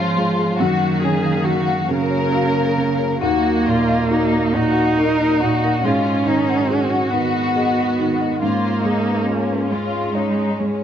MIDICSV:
0, 0, Header, 1, 6, 480
1, 0, Start_track
1, 0, Key_signature, -6, "minor"
1, 0, Tempo, 862069
1, 335, Time_signature, 6, 3, 24, 8
1, 1296, Tempo, 888889
1, 2736, Tempo, 857143
1, 5136, Tempo, 883652
1, 5981, End_track
2, 0, Start_track
2, 0, Title_t, "Marimba"
2, 0, Program_c, 0, 12
2, 216, Note_on_c, 0, 68, 56
2, 288, Note_off_c, 0, 68, 0
2, 337, Note_on_c, 0, 66, 74
2, 408, Note_off_c, 0, 66, 0
2, 579, Note_on_c, 0, 73, 48
2, 649, Note_off_c, 0, 73, 0
2, 701, Note_on_c, 0, 77, 58
2, 770, Note_off_c, 0, 77, 0
2, 815, Note_on_c, 0, 66, 74
2, 886, Note_off_c, 0, 66, 0
2, 935, Note_on_c, 0, 77, 57
2, 1007, Note_off_c, 0, 77, 0
2, 1054, Note_on_c, 0, 70, 54
2, 1126, Note_off_c, 0, 70, 0
2, 1171, Note_on_c, 0, 73, 56
2, 1245, Note_off_c, 0, 73, 0
2, 1293, Note_on_c, 0, 66, 76
2, 1366, Note_off_c, 0, 66, 0
2, 1654, Note_on_c, 0, 73, 55
2, 1727, Note_off_c, 0, 73, 0
2, 1775, Note_on_c, 0, 63, 82
2, 1847, Note_off_c, 0, 63, 0
2, 2018, Note_on_c, 0, 70, 57
2, 2089, Note_off_c, 0, 70, 0
2, 2137, Note_on_c, 0, 75, 64
2, 2210, Note_off_c, 0, 75, 0
2, 2256, Note_on_c, 0, 63, 78
2, 2330, Note_off_c, 0, 63, 0
2, 2381, Note_on_c, 0, 75, 57
2, 2453, Note_off_c, 0, 75, 0
2, 2500, Note_on_c, 0, 66, 54
2, 2571, Note_off_c, 0, 66, 0
2, 2617, Note_on_c, 0, 70, 52
2, 2688, Note_off_c, 0, 70, 0
2, 2737, Note_on_c, 0, 63, 78
2, 2809, Note_off_c, 0, 63, 0
2, 3099, Note_on_c, 0, 70, 55
2, 3169, Note_off_c, 0, 70, 0
2, 3216, Note_on_c, 0, 68, 75
2, 3287, Note_off_c, 0, 68, 0
2, 3455, Note_on_c, 0, 75, 50
2, 3525, Note_off_c, 0, 75, 0
2, 3574, Note_on_c, 0, 78, 55
2, 3645, Note_off_c, 0, 78, 0
2, 3693, Note_on_c, 0, 68, 74
2, 3764, Note_off_c, 0, 68, 0
2, 3813, Note_on_c, 0, 78, 54
2, 3884, Note_off_c, 0, 78, 0
2, 3934, Note_on_c, 0, 71, 46
2, 4005, Note_off_c, 0, 71, 0
2, 4053, Note_on_c, 0, 75, 50
2, 4124, Note_off_c, 0, 75, 0
2, 4173, Note_on_c, 0, 68, 69
2, 4245, Note_off_c, 0, 68, 0
2, 4537, Note_on_c, 0, 75, 51
2, 4608, Note_off_c, 0, 75, 0
2, 4656, Note_on_c, 0, 61, 72
2, 4727, Note_off_c, 0, 61, 0
2, 4897, Note_on_c, 0, 68, 44
2, 4969, Note_off_c, 0, 68, 0
2, 5019, Note_on_c, 0, 71, 48
2, 5090, Note_off_c, 0, 71, 0
2, 5139, Note_on_c, 0, 61, 61
2, 5208, Note_off_c, 0, 61, 0
2, 5258, Note_on_c, 0, 71, 42
2, 5328, Note_off_c, 0, 71, 0
2, 5374, Note_on_c, 0, 65, 40
2, 5444, Note_off_c, 0, 65, 0
2, 5497, Note_on_c, 0, 68, 39
2, 5567, Note_off_c, 0, 68, 0
2, 5614, Note_on_c, 0, 61, 59
2, 5685, Note_off_c, 0, 61, 0
2, 5981, End_track
3, 0, Start_track
3, 0, Title_t, "Violin section"
3, 0, Program_c, 1, 48
3, 0, Note_on_c, 1, 65, 74
3, 334, Note_on_c, 1, 66, 68
3, 338, Note_off_c, 1, 65, 0
3, 574, Note_off_c, 1, 66, 0
3, 575, Note_on_c, 1, 68, 64
3, 810, Note_on_c, 1, 66, 68
3, 814, Note_off_c, 1, 68, 0
3, 1051, Note_off_c, 1, 66, 0
3, 1055, Note_on_c, 1, 70, 80
3, 1775, Note_on_c, 1, 66, 68
3, 1777, Note_off_c, 1, 70, 0
3, 2010, Note_off_c, 1, 66, 0
3, 2019, Note_on_c, 1, 65, 65
3, 2259, Note_off_c, 1, 65, 0
3, 2264, Note_on_c, 1, 63, 65
3, 2498, Note_off_c, 1, 63, 0
3, 2501, Note_on_c, 1, 66, 67
3, 2735, Note_on_c, 1, 70, 66
3, 2736, Note_off_c, 1, 66, 0
3, 2971, Note_on_c, 1, 66, 65
3, 2975, Note_off_c, 1, 70, 0
3, 3211, Note_off_c, 1, 66, 0
3, 3215, Note_on_c, 1, 65, 63
3, 3452, Note_off_c, 1, 65, 0
3, 3454, Note_on_c, 1, 63, 58
3, 3691, Note_off_c, 1, 63, 0
3, 3697, Note_on_c, 1, 66, 67
3, 4655, Note_on_c, 1, 65, 56
3, 4657, Note_off_c, 1, 66, 0
3, 4891, Note_off_c, 1, 65, 0
3, 4896, Note_on_c, 1, 63, 55
3, 5132, Note_on_c, 1, 61, 55
3, 5137, Note_off_c, 1, 63, 0
3, 5369, Note_off_c, 1, 61, 0
3, 5371, Note_on_c, 1, 65, 53
3, 5610, Note_off_c, 1, 65, 0
3, 5614, Note_on_c, 1, 63, 47
3, 5855, Note_off_c, 1, 63, 0
3, 5855, Note_on_c, 1, 61, 46
3, 5981, Note_off_c, 1, 61, 0
3, 5981, End_track
4, 0, Start_track
4, 0, Title_t, "String section"
4, 0, Program_c, 2, 48
4, 0, Note_on_c, 2, 59, 50
4, 0, Note_on_c, 2, 65, 49
4, 0, Note_on_c, 2, 73, 50
4, 333, Note_on_c, 2, 54, 51
4, 336, Note_on_c, 2, 58, 52
4, 337, Note_off_c, 2, 59, 0
4, 338, Note_off_c, 2, 73, 0
4, 338, Note_on_c, 2, 77, 51
4, 341, Note_off_c, 2, 65, 0
4, 1771, Note_on_c, 2, 75, 51
4, 1778, Note_off_c, 2, 77, 0
4, 3210, Note_off_c, 2, 54, 0
4, 3213, Note_off_c, 2, 58, 0
4, 3214, Note_on_c, 2, 56, 51
4, 3217, Note_on_c, 2, 54, 47
4, 4633, Note_off_c, 2, 54, 0
4, 4651, Note_off_c, 2, 75, 0
4, 4654, Note_off_c, 2, 56, 0
4, 4654, Note_on_c, 2, 61, 49
4, 4656, Note_on_c, 2, 73, 43
4, 4657, Note_on_c, 2, 65, 44
4, 5981, Note_off_c, 2, 61, 0
4, 5981, Note_off_c, 2, 65, 0
4, 5981, Note_off_c, 2, 73, 0
4, 5981, End_track
5, 0, Start_track
5, 0, Title_t, "Cello"
5, 0, Program_c, 3, 42
5, 0, Note_on_c, 3, 53, 100
5, 334, Note_on_c, 3, 51, 104
5, 342, Note_off_c, 3, 53, 0
5, 1051, Note_off_c, 3, 51, 0
5, 1054, Note_on_c, 3, 49, 104
5, 1763, Note_off_c, 3, 49, 0
5, 1780, Note_on_c, 3, 58, 108
5, 2498, Note_on_c, 3, 63, 111
5, 2506, Note_off_c, 3, 58, 0
5, 3204, Note_off_c, 3, 63, 0
5, 3208, Note_on_c, 3, 61, 106
5, 3922, Note_on_c, 3, 59, 95
5, 3930, Note_off_c, 3, 61, 0
5, 4649, Note_off_c, 3, 59, 0
5, 4652, Note_on_c, 3, 58, 99
5, 5370, Note_on_c, 3, 56, 72
5, 5378, Note_off_c, 3, 58, 0
5, 5981, Note_off_c, 3, 56, 0
5, 5981, End_track
6, 0, Start_track
6, 0, Title_t, "Grand piano"
6, 0, Program_c, 4, 0
6, 0, Control_c, 4, 64, 127
6, 0, Note_on_c, 4, 44, 62
6, 0, Note_on_c, 4, 56, 45
6, 0, Note_on_c, 4, 65, 49
6, 0, Note_on_c, 4, 73, 47
6, 99, Note_off_c, 4, 56, 0
6, 99, Note_on_c, 4, 56, 50
6, 243, Note_off_c, 4, 73, 0
6, 313, Note_off_c, 4, 44, 0
6, 334, Note_on_c, 4, 42, 63
6, 336, Note_off_c, 4, 56, 0
6, 345, Control_c, 4, 64, 0
6, 351, Note_off_c, 4, 65, 0
6, 419, Control_c, 4, 64, 127
6, 583, Note_on_c, 4, 49, 49
6, 815, Note_on_c, 4, 66, 49
6, 961, Note_off_c, 4, 49, 0
6, 1060, Note_on_c, 4, 49, 49
6, 1198, Note_off_c, 4, 66, 0
6, 1306, Note_on_c, 4, 77, 47
6, 1443, Note_off_c, 4, 49, 0
6, 1540, Note_on_c, 4, 49, 52
6, 1686, Note_off_c, 4, 77, 0
6, 1754, Note_off_c, 4, 42, 0
6, 1778, Note_off_c, 4, 49, 0
6, 1779, Note_on_c, 4, 39, 63
6, 1786, Control_c, 4, 64, 0
6, 1867, Control_c, 4, 64, 127
6, 2020, Note_on_c, 4, 46, 50
6, 2259, Note_on_c, 4, 66, 54
6, 2406, Note_off_c, 4, 46, 0
6, 2497, Note_on_c, 4, 46, 48
6, 2642, Note_off_c, 4, 66, 0
6, 2735, Note_on_c, 4, 75, 51
6, 2878, Note_off_c, 4, 46, 0
6, 2980, Note_on_c, 4, 46, 51
6, 3118, Note_off_c, 4, 75, 0
6, 3192, Note_off_c, 4, 39, 0
6, 3209, Note_on_c, 4, 44, 60
6, 3215, Note_off_c, 4, 46, 0
6, 3223, Control_c, 4, 64, 0
6, 3307, Control_c, 4, 64, 127
6, 3444, Note_on_c, 4, 51, 46
6, 3693, Note_on_c, 4, 66, 47
6, 3830, Note_off_c, 4, 51, 0
6, 3929, Note_on_c, 4, 51, 43
6, 4076, Note_off_c, 4, 66, 0
6, 4173, Note_on_c, 4, 75, 46
6, 4316, Note_off_c, 4, 51, 0
6, 4418, Note_on_c, 4, 51, 46
6, 4558, Note_off_c, 4, 75, 0
6, 4629, Note_off_c, 4, 44, 0
6, 4656, Note_off_c, 4, 51, 0
6, 4657, Note_on_c, 4, 44, 57
6, 4663, Control_c, 4, 64, 0
6, 4765, Control_c, 4, 64, 127
6, 4897, Note_on_c, 4, 56, 41
6, 5138, Note_on_c, 4, 65, 40
6, 5278, Note_off_c, 4, 56, 0
6, 5375, Note_on_c, 4, 56, 38
6, 5515, Note_off_c, 4, 65, 0
6, 5609, Note_on_c, 4, 73, 37
6, 5757, Note_off_c, 4, 56, 0
6, 5856, Note_on_c, 4, 56, 38
6, 5981, Note_off_c, 4, 44, 0
6, 5981, Note_off_c, 4, 56, 0
6, 5981, Note_off_c, 4, 73, 0
6, 5981, End_track
0, 0, End_of_file